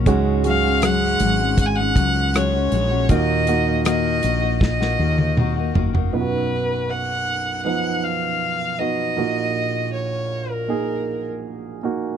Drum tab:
HH |x-x-x-x-x-x-x-x-|x-x-x-x---------|----------------|----------------|
SD |----r-------r---|----r---oo------|----------------|----------------|
T1 |----------------|-----------o----|----------------|----------------|
T2 |----------------|------------o---|----------------|----------------|
FT |----------------|--------------oo|----------------|----------------|
BD |o-------o-o-----|o-------o-------|----------------|----------------|